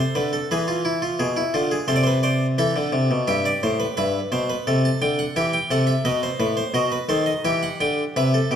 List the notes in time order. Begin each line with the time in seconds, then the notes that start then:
Already playing: A4
0.00 C5
0.15 D3 B4
0.33 A4
0.51 E3 G#4 B4
0.68 F4
0.85 E4
1.02 F4
1.19 B2 G#4
1.36 E4
1.54 D3 F4
1.71 G#4
1.88 C3 A4 C5
1.96 D5
2.03 B4 C5
2.23 C5 D5
2.58 E3 A4 E5
2.76 D3
2.92 C3
3.11 B2
3.28 G2 G4 E5
3.46 D5
3.63 A2 C5
3.80 B4
3.97 G2 B4 E5
4.32 B2 C5
4.50 B4
4.67 C3 A4
4.85 A5
5.02 D3 G5
5.19 F#5
5.36 E3 G4 E5
5.53 G5
5.71 C3 A4 F#5
5.87 E5
6.05 B2 B4 D#5
6.23 C5
6.40 A2 B4
6.57 C5
6.74 B2 F#4 D#5
6.92 B4
7.09 D#3 A4 C5
7.26 D#5
7.45 E3 G4 E5
7.63 F#5
7.81 D3 G5
8.16 C3 B4 E5
8.34 A4
8.51 B2 G4